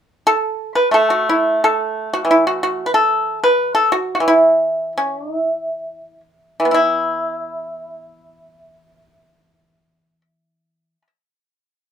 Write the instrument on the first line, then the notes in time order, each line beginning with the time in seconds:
pipa
0.27 A4
0.75 B4
0.91 A3 A4
1.10 F#4
1.29 E4
1.64 A4
2.13 F#4
2.25 E3
2.31 E4
2.47 F#4
2.63 F#4
2.86 B4
2.94 A4
3.44 B4
3.75 A4
3.92 F#4
4.15 F#4
4.20 E3
4.28 E4
4.98 C#4
5.37 E4
6.60 E3
6.65 B3
6.71 E4